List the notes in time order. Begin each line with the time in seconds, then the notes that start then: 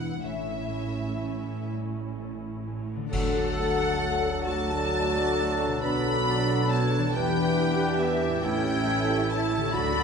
Already playing: E1 E2 E3 B3 D4 E4 F#5
0.23 A1 A2 C#4 E4 E5
0.27 E5
0.74 E4
1.24 A3
1.73 G3
2.20 A3
2.67 E4
2.96 D3 A3
3.04 D4
3.10 D2 F#3 A3 D4 F#4 A4 F#5, concert bass drum, crash
3.14 F#3 A3 D4
3.35 D4 A4
3.59 A3 F#4
3.81 D4 A4
4.04 A3 F#4
4.28 D4 A4
4.46 D2 F#3 A3 D4 F#4 A4 D5 A5
4.72 D4 A4
4.94 A3 F#4
5.18 D4 A4
5.40 A3 F#4
5.62 B2 D4 A4
5.70 A3
5.74 D4
5.79 B1 F#3 B3 D4 F#4 A4 D5
5.84 B3 F#4 B5
6.05 D4 A4
6.27 B3 F#4
6.49 D4 A4
6.70 B3 F#4 C#5 A5
6.92 D4 A4
6.97 E3
7.02 G3
7.07 D4
7.11 E4 B4 G5
7.15 E2 E3 B3 D4 E4 G4 G5
7.35 D4 G4
7.55 B3 E4
7.77 D4 G4
7.99 B3 E4 G4 E5
8.21 D4 G4
8.28 A2
8.32 A3
8.36 C#4
8.40 A3 C#4 E4 G5
8.44 A1 E3 A3 C#4 E4 A4 C#5 G5
8.64 C#4 G4
8.86 A3 E4
9.08 C#4 G4
9.29 A3 E4 C#5 A5
9.51 C#4 G4
9.56 D3
9.60 A3
9.65 D4
9.69 F#3 A3 D4 F#4 D5 B5
9.73 D2 F#3 F#4 A4 B5
9.93 D4 A4